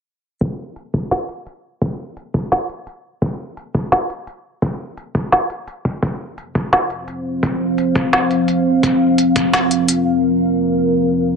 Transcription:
0.41 kick loud
0.41 closed hi-hat medium
0.76 closed hi-hat medium
0.94 kick loud
0.94 closed hi-hat medium
1.11 snare loud
1.11 closed hi-hat medium
1.29 closed hi-hat medium
1.47 closed hi-hat medium
1.82 kick loud
1.82 closed hi-hat medium
2.17 closed hi-hat medium
2.34 kick loud
2.34 closed hi-hat medium
2.52 snare loud
2.52 closed hi-hat medium
2.69 closed hi-hat medium
2.87 closed hi-hat medium
3.22 kick loud
3.22 closed hi-hat medium
3.57 closed hi-hat medium
3.74 kick loud
3.74 closed hi-hat medium
3.92 snare loud
3.92 closed hi-hat medium
4.10 closed hi-hat medium
4.27 closed hi-hat medium
4.62 kick loud
4.62 closed hi-hat medium
4.97 closed hi-hat medium
5.15 kick loud
5.15 closed hi-hat medium
5.32 snare loud
5.32 closed hi-hat medium
5.50 closed hi-hat medium
5.67 closed hi-hat medium
5.85 kick medium
6.03 11.36 F3 medium
6.03 11.36 C4 medium
6.03 8.81 C5 medium
6.03 11.36 F5 medium
6.03 kick loud
6.03 closed hi-hat medium
6.38 closed hi-hat medium
6.55 kick loud
6.55 closed hi-hat medium
6.73 snare loud
6.73 closed hi-hat medium
6.90 closed hi-hat medium
7.08 closed hi-hat medium
7.43 kick loud
7.43 closed hi-hat medium
7.78 closed hi-hat medium
7.95 kick loud
7.95 closed hi-hat medium
8.13 snare loud
8.13 closed hi-hat medium
8.31 closed hi-hat medium
8.48 closed hi-hat medium
8.83 11.36 A#4 medium
8.83 kick loud
8.83 closed hi-hat medium
9.18 closed hi-hat medium
9.36 kick medium
9.36 closed hi-hat medium
9.53 snare loud
9.53 closed hi-hat medium
9.71 closed hi-hat medium
9.88 closed hi-hat medium

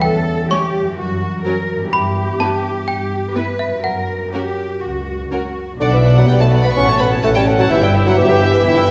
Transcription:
0.00 0.43 E2 medium
0.00 0.91 E3 soft
0.00 0.94 G3 soft
0.00 0.88 C#4 soft
0.00 0.50 A4 medium
0.00 1.93 C#5 soft
0.00 0.47 G5 medium
0.51 0.59 G3 soft
0.51 0.59 C#4 soft
0.51 0.97 G4 medium
0.51 0.59 C#5 soft
0.51 1.18 C#6 medium
0.81 1.86 F#2 soft
0.85 1.88 F#3 soft
0.89 1.90 C#4 soft
0.94 1.93 A#4 soft
0.98 1.38 F#2 medium
0.98 1.45 F#4 medium
1.45 1.53 F#3 soft
1.45 1.55 C#4 soft
1.45 1.92 A#4 soft
1.45 1.54 A#4 soft
1.75 3.77 G2 soft
1.79 3.79 B3 soft
1.84 3.82 E4 soft
1.88 3.84 B4 soft
1.93 2.32 G2 medium
1.93 3.32 G4 medium
1.93 2.37 B5 medium
2.40 2.48 B3 soft
2.40 2.49 E4 soft
2.40 2.48 B4 soft
2.40 2.84 A5 medium
2.88 3.27 G2 soft
2.88 3.56 G5 medium
3.35 3.43 B3 soft
3.35 3.44 E4 soft
3.35 3.84 B4 soft
3.35 3.44 B4 soft
3.59 3.82 E5 soft
3.66 5.73 F#2 soft
3.71 5.75 C#4 soft
3.75 6.11 F#4 soft
3.80 5.80 A#4 soft
3.84 4.25 F#2 soft
3.84 4.28 A#4 soft
3.84 5.27 F#5 medium
4.33 4.42 C#4 soft
4.33 4.41 F#4 soft
4.33 4.79 G4 medium
4.33 4.42 A#4 soft
4.82 5.23 C#2 soft
4.82 5.30 F#4 soft
5.31 5.39 C#4 soft
5.31 5.79 F#4 soft
5.31 5.40 F#4 soft
5.31 5.40 A#4 soft
5.80 6.23 B1 medium
5.80 6.78 B2 soft
5.80 6.23 B2 medium
5.80 5.94 D3 medium
5.80 6.25 D4 medium
5.80 5.92 D5 soft
5.80 5.86 D5 medium
5.80 5.92 F#5 soft
5.92 6.17 E3 medium
5.92 6.05 B4 soft
5.92 6.04 D5 soft
5.92 6.16 E5 soft
5.96 6.27 B3 soft
6.05 6.15 D5 soft
6.05 6.17 F#5 soft
6.12 6.59 F#4 soft
6.12 6.28 B4 soft
6.12 6.27 D5 soft
6.12 6.28 F#5 medium
6.17 6.29 F#3 medium
6.28 6.70 B1 medium
6.28 6.70 B1 soft
6.28 6.70 B2 medium
6.28 6.42 G3 medium
6.28 7.21 B3 medium
6.28 6.78 B3 soft
6.28 6.39 D5 soft
6.28 6.39 F#5 soft
6.28 6.33 G5 medium
6.40 6.64 A3 medium
6.40 6.52 B4 soft
6.40 6.51 D5 soft
6.40 6.48 A5 medium
6.45 6.78 B4 soft
6.52 6.63 D5 soft
6.52 6.64 F#5 soft
6.60 7.06 F#4 soft
6.60 6.76 B4 soft
6.60 6.75 B5 medium
6.64 6.70 B3 medium
6.64 6.76 D5 soft
6.75 7.17 A1 medium
6.75 7.18 A1 medium
6.75 7.18 A2 medium
6.75 7.73 A2 soft
6.75 6.87 C#4 medium
6.75 6.87 A4 soft
6.75 6.87 F#5 soft
6.75 6.99 C#6 medium
6.87 6.99 C#5 soft
6.87 6.99 A5 soft
6.92 7.73 C#4 soft
6.98 7.10 B3 medium
6.98 7.11 A4 soft
6.98 7.11 F#5 soft
6.98 7.06 B5 medium
7.08 7.72 F#4 soft
7.08 7.23 C#5 soft
7.08 7.23 A5 soft
7.23 7.65 A1 medium
7.23 7.65 A2 medium
7.23 7.29 A3 medium
7.23 7.69 C#4 medium
7.23 7.53 A4 soft
7.23 7.34 A4 soft
7.23 7.34 F#5 soft
7.23 7.27 A5 medium
7.34 7.46 G3 medium
7.34 7.47 C#5 soft
7.34 7.42 G5 medium
7.34 7.46 A5 soft
7.39 7.72 C#5 soft
7.47 7.59 A4 soft
7.47 7.59 F#5 soft
7.55 7.72 A4 soft
7.55 7.70 F#5 medium
7.59 7.64 F#3 medium
7.59 7.71 C#5 soft
7.59 7.70 A5 soft
7.70 8.12 G1 medium
7.70 8.64 G2 medium
7.70 8.12 G2 medium
7.70 7.82 E3 medium
7.70 8.17 E4 medium
7.70 7.82 G4 soft
7.70 7.82 E5 medium
7.70 7.82 E5 soft
7.82 7.93 G3 medium
7.82 7.94 B4 soft
7.82 7.94 G5 soft
7.82 7.91 G5 medium
7.86 8.79 B3 soft
7.94 8.06 G4 medium
7.94 8.06 E5 soft
8.02 8.32 E4 medium
8.02 8.18 B4 soft
8.02 8.17 G5 soft
8.07 8.17 F#3 medium
8.07 8.18 F#5 medium
8.17 8.59 G1 medium
8.17 8.60 G1 medium
8.17 8.59 G2 medium
8.17 8.26 E3 medium
8.17 8.29 G4 soft
8.17 8.64 G4 medium
8.17 8.48 B4 soft
8.17 8.29 E5 soft
8.17 8.91 E5 medium
8.24 8.32 F#3 medium
8.29 8.91 E3 medium
8.29 8.41 B4 soft
8.29 8.41 G5 soft
8.33 8.91 E4 soft
8.41 8.53 G4 medium
8.41 8.53 E5 medium
8.49 8.91 B4 soft
8.49 8.65 G5 soft
8.53 8.65 B4 soft
8.65 8.91 G1 medium
8.65 8.91 G2 medium
8.65 8.91 G2 soft
8.65 8.91 E4 medium
8.65 8.76 G4 soft
8.65 8.76 E5 medium
8.77 8.88 B4 soft
8.77 8.88 G5 soft
8.81 8.91 B3 soft

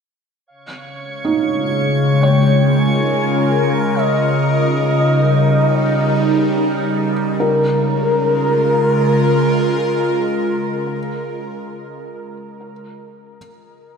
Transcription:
0.47 7.39 C#3 medium
0.47 7.42 C#5 medium
0.47 2.22 F5 loud
0.47 7.42 C#6 medium
0.96 3.94 G#3 medium
1.25 6.12 D#4 soft
1.93 5.33 F4 medium
2.05 7.41 A#4 medium
2.21 7.11 C#5 medium
2.21 2.81 G5 loud
2.79 3.96 G#5 loud
3.94 6.83 D#5 loud
4.23 7.42 G3 medium
4.33 7.42 D#4 medium
7.40 10.98 C#3 medium
7.40 10.98 A#4 soft
7.40 10.99 A#4 medium
7.59 11.17 G#3 medium
7.76 11.34 F4 medium
7.95 11.53 A#4 medium

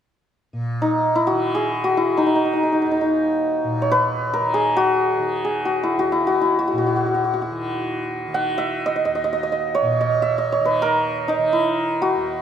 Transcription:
0.53 3.63 A#2 soft
0.82 1.21 D#4 medium
1.15 1.97 E4 medium
1.27 1.84 F#4 medium
1.31 2.08 D#3 soft
1.55 4.54 G#4 medium
1.84 4.76 F#4 medium
1.97 2.23 E4 medium
2.08 4.41 D#3 medium
2.17 2.26 D#4 medium
2.26 2.35 D#4 soft
2.35 2.44 D#4 soft
2.45 2.53 D#4 soft
2.53 2.63 D#4 soft
2.63 2.72 D#4 soft
2.72 2.81 D#4 soft
2.82 2.91 D#4 soft
2.86 5.96 D#2 soft
2.91 3.01 D#4 soft
3.01 5.89 D#4 soft
3.64 6.72 A#2 soft
3.82 6.35 C#5 medium
3.91 4.40 B4 medium
4.33 7.16 A#4 medium
4.41 5.19 D#3 soft
4.54 5.44 G#4 medium
4.77 5.65 F#4 medium
5.19 7.51 D#3 soft
5.44 8.48 G#4 medium
5.65 5.99 F#4 medium
5.83 6.12 E4 medium
5.96 9.05 D#2 soft
5.96 6.27 F#4 medium
6.12 6.41 E4 medium
6.27 6.58 F#4 medium
6.41 8.92 E4 medium
6.59 6.67 F#4 medium
6.67 6.77 F#4 soft
6.73 9.82 A#2 soft
6.78 6.86 F#4 soft
6.87 6.96 F#4 soft
6.96 7.06 F#4 soft
7.06 7.14 F#4 soft
7.15 7.24 F#4 soft
7.24 7.33 F#4 soft
7.34 7.41 F#4 soft
7.42 10.65 F#4 soft
7.51 8.28 D#3 soft
8.28 10.60 D#3 medium
8.34 10.47 F#5 medium
8.58 8.92 E5 medium
8.86 8.95 D#5 medium
8.96 9.05 D#5 medium
9.05 12.16 D#2 soft
9.05 9.15 D#5 medium
9.15 9.24 D#5 medium
9.24 9.32 D#5 medium
9.33 9.43 D#5 medium
9.43 9.52 D#5 medium
9.52 10.00 D#5 medium
9.75 10.52 C#5 medium
9.82 12.42 A#2 medium
10.01 10.28 D#5 medium
10.22 10.44 E5 medium
10.38 11.59 D#5 medium
10.52 12.42 C#5 medium
10.60 11.39 D#3 medium
10.65 10.88 B4 medium
10.82 12.42 A#4 medium
11.28 12.42 D#4 medium
11.39 12.42 D#3 medium
11.53 12.42 E4 medium
12.02 12.42 F#4 medium
12.16 12.42 D#2 medium

